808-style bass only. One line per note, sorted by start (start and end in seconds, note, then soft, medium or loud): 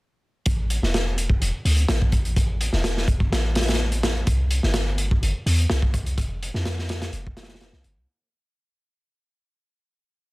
0.46 0.79 A1 loud
0.83 1.38 E1 medium
1.42 1.52 E1 loud
1.65 1.85 D2 loud
1.89 2.70 A1 loud
2.73 3.29 E1 medium
3.32 4.24 A1 loud
4.27 4.60 C2 loud
4.64 5.19 G1 medium
5.23 5.33 G1 loud
5.46 5.66 E2 loud
5.70 6.19 C2 loud
6.18 6.51 F1 loud
6.54 7.10 F2 medium
7.13 7.73 F1 loud
7.73 7.82 C2 medium
7.84 7.98 G1 medium
7.97 8.06 C2 medium